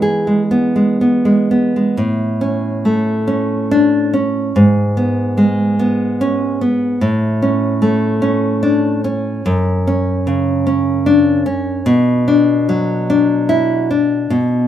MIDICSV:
0, 0, Header, 1, 2, 480
1, 0, Start_track
1, 0, Key_signature, 3, "major"
1, 0, Tempo, 974026
1, 975, Time_signature, 3, 2, 24, 8
1, 975, Tempo, 855920
1, 2415, Tempo, 816327
1, 5775, Tempo, 801068
1, 7695, Tempo, 833333
1, 8393, End_track
2, 0, Start_track
2, 0, Title_t, "Nylon-string guitar"
2, 0, Program_c, 0, 24
2, 0, Note_on_c, 0, 52, 63
2, 0, Note_on_c, 0, 56, 47
2, 0, Note_on_c, 0, 59, 50
2, 10, Note_on_c, 0, 68, 59
2, 128, Note_off_c, 0, 56, 0
2, 134, Note_on_c, 0, 56, 48
2, 207, Note_off_c, 0, 68, 0
2, 245, Note_off_c, 0, 59, 0
2, 251, Note_on_c, 0, 59, 53
2, 367, Note_off_c, 0, 56, 0
2, 373, Note_on_c, 0, 56, 43
2, 492, Note_off_c, 0, 59, 0
2, 498, Note_on_c, 0, 59, 47
2, 611, Note_off_c, 0, 56, 0
2, 617, Note_on_c, 0, 56, 51
2, 738, Note_off_c, 0, 59, 0
2, 744, Note_on_c, 0, 59, 52
2, 862, Note_off_c, 0, 56, 0
2, 868, Note_on_c, 0, 56, 44
2, 956, Note_off_c, 0, 52, 0
2, 973, Note_off_c, 0, 59, 0
2, 973, Note_on_c, 0, 45, 69
2, 977, Note_off_c, 0, 56, 0
2, 1217, Note_on_c, 0, 61, 59
2, 1464, Note_on_c, 0, 57, 51
2, 1695, Note_off_c, 0, 61, 0
2, 1702, Note_on_c, 0, 61, 65
2, 1948, Note_on_c, 0, 62, 69
2, 2178, Note_off_c, 0, 61, 0
2, 2182, Note_off_c, 0, 57, 0
2, 2184, Note_off_c, 0, 62, 0
2, 2184, Note_on_c, 0, 61, 59
2, 2392, Note_off_c, 0, 45, 0
2, 2419, Note_off_c, 0, 61, 0
2, 2422, Note_on_c, 0, 44, 70
2, 2664, Note_on_c, 0, 59, 59
2, 2902, Note_on_c, 0, 56, 56
2, 3142, Note_off_c, 0, 59, 0
2, 3149, Note_on_c, 0, 59, 62
2, 3393, Note_on_c, 0, 61, 68
2, 3624, Note_off_c, 0, 56, 0
2, 3624, Note_off_c, 0, 59, 0
2, 3628, Note_off_c, 0, 61, 0
2, 3631, Note_on_c, 0, 59, 64
2, 3841, Note_off_c, 0, 44, 0
2, 3865, Note_off_c, 0, 59, 0
2, 3866, Note_on_c, 0, 45, 79
2, 4107, Note_on_c, 0, 61, 62
2, 4339, Note_on_c, 0, 57, 57
2, 4567, Note_off_c, 0, 61, 0
2, 4574, Note_on_c, 0, 61, 68
2, 4814, Note_on_c, 0, 62, 74
2, 5051, Note_off_c, 0, 57, 0
2, 5052, Note_off_c, 0, 61, 0
2, 5053, Note_off_c, 0, 62, 0
2, 5059, Note_on_c, 0, 61, 68
2, 5273, Note_off_c, 0, 45, 0
2, 5300, Note_off_c, 0, 61, 0
2, 5302, Note_on_c, 0, 42, 77
2, 5548, Note_on_c, 0, 61, 66
2, 5780, Note_on_c, 0, 49, 60
2, 6011, Note_off_c, 0, 61, 0
2, 6018, Note_on_c, 0, 61, 67
2, 6255, Note_on_c, 0, 62, 75
2, 6486, Note_off_c, 0, 61, 0
2, 6487, Note_off_c, 0, 49, 0
2, 6489, Note_off_c, 0, 62, 0
2, 6494, Note_on_c, 0, 61, 69
2, 6705, Note_off_c, 0, 42, 0
2, 6729, Note_off_c, 0, 61, 0
2, 6733, Note_on_c, 0, 47, 85
2, 6984, Note_on_c, 0, 62, 62
2, 7230, Note_on_c, 0, 54, 58
2, 7468, Note_off_c, 0, 62, 0
2, 7475, Note_on_c, 0, 62, 70
2, 7709, Note_on_c, 0, 64, 67
2, 7940, Note_off_c, 0, 54, 0
2, 7940, Note_off_c, 0, 64, 0
2, 7942, Note_off_c, 0, 62, 0
2, 7949, Note_on_c, 0, 62, 60
2, 8155, Note_off_c, 0, 47, 0
2, 8179, Note_on_c, 0, 47, 75
2, 8182, Note_off_c, 0, 62, 0
2, 8393, Note_off_c, 0, 47, 0
2, 8393, End_track
0, 0, End_of_file